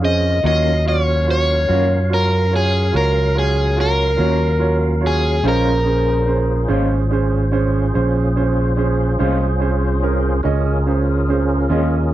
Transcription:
Already playing: F2 C#4 F4 G#4 A#4
0.02 C#4 G#4 C5 D#5
0.43 D#2 D#3 F#3 A#3 C#4 F4 F#4 A#4 C#5 D#5 F5
0.85 F4 F#4 C#5
1.27 F4 F#4 C#5
1.31 C#5
1.68 F#2 D#3 A#3 C#4 F4 F#4 C#5
2.09 F4 F#4 C#5
2.14 A#4
2.51 F4 F#4 C#5
2.56 G#4
2.92 C#2 F4 F#4 C#5
2.97 A#4
3.35 F4 F#4 C#5
3.39 G#4
3.76 F4 F#4 C#5
3.81 A#4
4.17 D#2 D#3 A#3 C#4 F4 F#4 C#5
4.59 F4 F#4 C#5
5.01 F4 F#4 C#5
5.07 G#4
5.43 A#1 A#2 G#3 C#4 F4 G#4 C5
5.48 A#4
5.84 C#4 G#4 C5
6.26 C#4 G#4 C5
6.68 G#1 A#2 G#3 C#4 F4 G#4 C5
7.11 C#4 G#4 C5
7.52 C#4 G#4 C5
7.94 A#1 C#4 G#4 C5
8.36 C#4 G#4 C5
8.77 C#4 G#4 C5
9.19 C2 A#2 G#3 C#4 F4 G#4 C5
9.60 C#4 G#4 C5
10.02 C#4 G#4 A#4
10.43 C#2 C#4 F4 G#4 A#4 D#5
10.86 C#4 G#4 C5
11.29 C#4 G#4 C5
11.70 D#2 A#2 G#3 C#4 F4 G#4 D#5

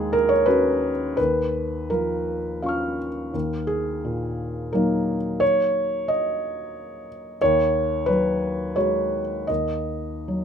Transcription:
Already playing: D#2 G#3 G#4
0.13 A#4
0.29 C#5
0.46 C#4 F#4 B4
1.17 D#2 B4
1.90 F3 A#4
2.62 C#4 F4 F5 C#6
2.69 F6
3.34 D#2
3.67 G#4
4.04 A#2
4.73 F#3 A#3 D#4 A#4
5.40 C#5
6.08 D#5
7.41 D#2 C#5
8.06 F#3 B4
8.76 G#3 F#4 C#5
9.47 D#2 D#5
10.28 F#3

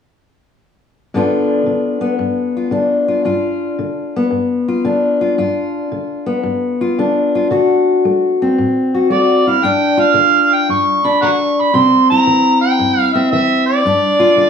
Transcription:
1.14 G2 D3 B3 D4 F4
1.66 D3
2.01 B3
2.19 G2
2.57 F4
2.71 D3 D4
3.08 F4
3.25 G2 F4
3.79 D3
4.16 B3
4.30 G2
4.68 F4
4.85 D3 D4
5.21 F4
5.38 G2 F4
5.92 D3
6.26 B3
6.43 G2
6.81 F4
6.98 D3 D4
7.35 F4
7.51 D3 F#4
8.05 A3
8.42 C4
8.58 A2
8.94 F#4
9.10 A3 F#4 D5
9.47 E4 F5
9.63 G2 D4 G5
9.97 F4 F5
10.14 D3
10.54 G5
10.69 G2 C#6
11.05 D4 B5
11.22 D3 F#5 A#5 C#6
11.61 B5
11.74 C3 C4 C6
12.10 E4 A#5
12.27 E3
12.61 G5
12.79 G2
13.00 F5
13.13 C4 E5
13.31 E3 E5
13.66 D5
13.85 G2 D4
14.20 F4
14.37 D3

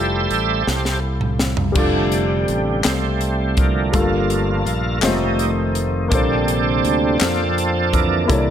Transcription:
Already playing: F1 G3 A3 E4 F4 G4 A4 C5 E5
0.31 A1, closed hi-hat
0.67 C2, snare
0.85 snare
1.21 mid tom
1.39 snare
1.57 floor tom
1.72 F1 G3 D4, kick, crash
1.76 C3 D3 G3 A3 D4 F4 A4
2.12 closed hi-hat
2.48 A1, closed hi-hat
2.84 C2 G3 A3, snare, clap, closed hi-hat
2.88 C4
3.21 closed hi-hat
3.57 D3 F3 A#3, kick, closed hi-hat
3.92 G1 G2 G3 A3 A#3 F4 A4, kick, closed hi-hat
4.00 A#3
4.30 closed hi-hat
4.66 A#1 A#3, closed hi-hat
5.01 F1 C3 D#3 G3 G#3 A3 D#4 F4 C5, snare, clap, closed hi-hat
5.07 A3
5.39 closed hi-hat
5.75 closed hi-hat
6.08 A#1 A#2 C3 D3 G3 A#3 C4 D4 A4, kick, closed hi-hat
6.12 D4 A4 C5
6.48 closed hi-hat
6.85 D2, closed hi-hat
7.19 F2 F3 C4, snare, clap, closed hi-hat
7.58 closed hi-hat
7.93 D3 E3 A#3, kick, closed hi-hat
8.26 C3 E3 A#3 E4, closed hi-hat
8.30 C2 A#3 D4 A4 C#5, kick
8.39 D5

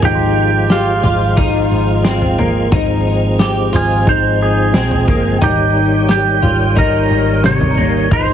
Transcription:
Already playing: F3 G#3
0.02 G#1 D#4 F4 G4, floor tom
0.15 C6
0.70 F4 G4, snare
1.03 G#1 F4, floor tom
1.37 D#4, kick, floor tom
1.71 G#1
2.04 C4, snare
2.22 floor tom
2.38 A#3 A#5, floor tom
2.72 G#1 F3 C4 D#4, kick, floor tom
3.39 G4, snare
3.73 G#1 F4 G#4, floor tom
4.07 G#1 D#4 C5, kick
4.42 G#4
4.74 A#1 C4, snare
4.91 floor tom
5.08 G1 A#3, kick, floor tom
5.38 G#1 D#3 G3 D#4 C#5 G5, floor tom
5.43 G4 A#5
6.09 G4, snare
6.42 G#1 F4, floor tom
6.76 D#4 A#4, kick, floor tom
7.11 G#1
7.44 C3 C#5, snare
7.61 floor tom
7.71 A#5
7.77 A#3, floor tom
8.11 G#1 F3 G#3 D#4 C5, kick, floor tom

